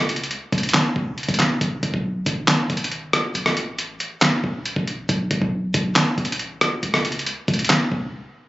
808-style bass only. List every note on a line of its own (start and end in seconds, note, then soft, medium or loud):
0.00 0.29 C#2 loud
0.52 0.73 C#2 loud
0.96 1.27 C#2 loud
1.29 1.60 C#2 loud
1.61 1.82 G#1 loud
1.83 1.93 G#1 loud
1.94 2.25 B1 loud
2.26 2.68 G#1 loud
2.70 3.12 G#1 loud
3.35 3.98 A1 loud
4.44 4.75 A1 loud
4.76 5.08 A1 loud
5.09 5.30 B1 loud
5.31 5.41 B1 loud
5.42 5.73 B1 loud
5.74 5.95 B1 loud
6.18 6.80 A1 loud
6.83 7.25 C#2 loud
7.48 7.69 C#2 loud
7.92 8.12 C#2 loud